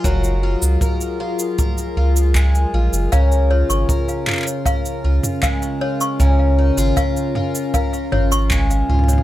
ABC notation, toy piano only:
X:1
M:4/4
L:1/16
Q:1/4=78
K:Dbmix
V:1 name="Toy piano"
z16 | f z d d' z4 f z3 f z d d' | z4 f z3 f z d d' z4 |]